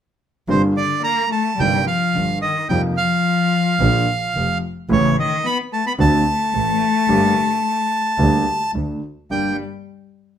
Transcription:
0.48 grand piano G1 G2 D3 G3 A#3 F4, double bass G1, cello C3, bandoneon C5
0.76 cello D3, bandoneon D5
1.04 cello A#3, bandoneon A#5
1.30 cello A3, bandoneon A5
1.58 double bass G1, grand piano G1 G2 C3 G3 A#3 D#4, cello G3, bandoneon G5
1.85 cello F3, bandoneon F5
2.15 double bass G1, grand piano G1 G2
2.41 cello D#3, bandoneon D#5
2.69 double bass F2, grand piano F2 C3 F3 A#3 D#4, cello G3, bandoneon G5
2.96 cello F3, bandoneon F5
3.80 double bass A#1, grand piano A#1 A#2 D3 F3 A#3 F4
4.35 double bass F1, grand piano F1 F2
4.89 grand piano A1 A2 C#3 E3 A3 E4, double bass A1, cello C#3, bandoneon C#5
5.18 cello D#3, bandoneon D#5
5.45 cello B3, bandoneon B5
5.72 cello A3, bandoneon A5
5.86 cello B3, bandoneon B5
5.98 grand piano D2 D3 A3 C4 F#4, double bass D2, cello A3, bandoneon A5
6.53 double bass A1, grand piano A1 A2
7.08 double bass G1, grand piano G1 G2 D3 G3 A#3 G4
8.19 double bass D2, grand piano D2 D3 G3 A#3 G4
8.74 double bass D2, grand piano D2 D3
9.30 double bass G1, grand piano G2 A#3 D4 G4, cello G3, bandoneon G5

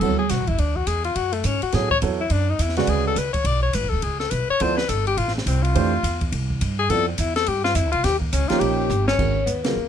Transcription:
0.00 upright bass D2, grand piano F#3 B3 E4 A4 C#5, tenor saxophone A4, kick, crash
0.19 tenor saxophone G#4
0.29 upright bass B1, tenor saxophone F#4, snare, hi-hat pedal, ride
0.39 upright bass A1
0.47 upright bass F#1, tenor saxophone E4, kick, ride
0.58 upright bass D2, tenor saxophone D4, ride
0.76 tenor saxophone F#4, kick
0.87 upright bass E2, tenor saxophone G#4, hi-hat pedal, ride
1.04 tenor saxophone F4, ride
1.15 upright bass F#2, tenor saxophone F#4, ride
1.33 tenor saxophone A3, ride
1.44 upright bass G#2, tenor saxophone C#4, hi-hat pedal, ride
1.62 tenor saxophone F#4, muted upright bass stroke, ride
1.72 upright bass A2, grand piano F#3 B3 E4 A4 C#5, tenor saxophone G#4, snare, ride
1.91 tenor saxophone C#5, kick
2.02 upright bass E2, grand piano F#3 B3 E4 A4 C#5, hi-hat pedal, ride
2.20 tenor saxophone E4
2.30 upright bass F#2, tenor saxophone D4, ride
2.50 tenor saxophone D#4
2.59 upright bass E2, tenor saxophone E4, hi-hat pedal, ride
2.69 snare
2.77 grand piano C#3 G#3 F#4 B4 D5, tenor saxophone F#4, snare, ride
2.87 upright bass D2, tenor saxophone G#4, ride
3.07 tenor saxophone A4
3.16 upright bass C#2, tenor saxophone B4, hi-hat pedal, ride
3.33 tenor saxophone C#5, muted upright bass stroke, kick, ride
3.44 upright bass B1, tenor saxophone D5, ride
3.63 tenor saxophone C#5
3.73 upright bass A1, tenor saxophone B4, hi-hat pedal, ride
3.84 upright bass F#1
3.89 upright bass D1, tenor saxophone A4, kick
4.02 upright bass C#2, tenor saxophone G#4, ride
4.20 tenor saxophone A4, snare
4.30 upright bass B1, tenor saxophone B4, hi-hat pedal, ride
4.50 tenor saxophone C#5, muted upright bass stroke
4.60 upright bass D2, grand piano F3 B3 E4 A4 D5, tenor saxophone C5, ride
4.77 tenor saxophone B4, snare
4.89 upright bass G1, tenor saxophone A4, hi-hat pedal, ride
5.07 tenor saxophone G4, ride
5.17 upright bass A1, tenor saxophone F4, ride
5.28 snare
5.34 tenor saxophone A3, snare
5.46 upright bass C2, tenor saxophone C4, hi-hat pedal, ride
5.63 tenor saxophone F4, ride
5.75 upright bass F2, grand piano E3 A3 D4 G4 C5, ride
6.03 upright bass E2, hi-hat pedal, ride
6.21 kick, ride
6.32 upright bass C2, ride
6.50 kick
6.61 upright bass G2, hi-hat pedal, ride
6.79 tenor saxophone G#4
6.89 upright bass F2, grand piano F3 B3 E4 A4 D5, tenor saxophone A4, ride
7.08 tenor saxophone C4
7.18 upright bass E2, tenor saxophone E4, hi-hat pedal, ride
7.36 tenor saxophone A4, snare, ride
7.46 upright bass G2, tenor saxophone G4, ride
7.64 tenor saxophone F4, snare
7.75 upright bass F2, tenor saxophone E4, hi-hat pedal, ride
7.86 upright bass D2
7.91 upright bass C2, tenor saxophone F4, ride
8.04 upright bass D#2, tenor saxophone G4, snare, ride
8.19 tenor saxophone A#3, kick
8.32 upright bass C#2, tenor saxophone C#4, hi-hat pedal, ride
8.48 grand piano F3 A#3 C#4 D#4 G4, tenor saxophone F4, muted upright bass stroke, snare, ride
8.60 upright bass A#1, tenor saxophone G4, ride
8.90 upright bass G1, hi-hat pedal
9.07 tenor saxophone C#4, vibraphone C#5, snare
9.18 upright bass G#1, grand piano D#3 G#3 C#4 F#4 A#4, kick, crash
9.46 upright bass D#2, tenor saxophone B3, vibraphone B4, hi-hat pedal, ride
9.63 grand piano C#3 F#3 B3 F4 G#4, tenor saxophone A#3, vibraphone A#4, snare, ride
9.76 upright bass C#2

